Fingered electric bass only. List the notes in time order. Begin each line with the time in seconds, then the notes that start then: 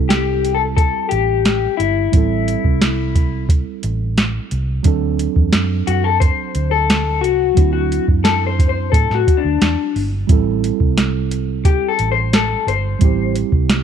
Already playing: C2
1.12 A1
1.79 G1
2.14 A1
2.65 C2
3.84 A1
4.52 C2
4.85 D2
5.36 E2
5.54 F#2
5.88 F#2
6.55 D2
7.23 C2
7.57 D2
8.08 F#2
8.93 A2
9.10 A2
9.45 D2
9.61 E2
9.96 G1
10.29 A1
10.80 C2
12.00 A1
12.67 G1
13.01 A1
13.52 C2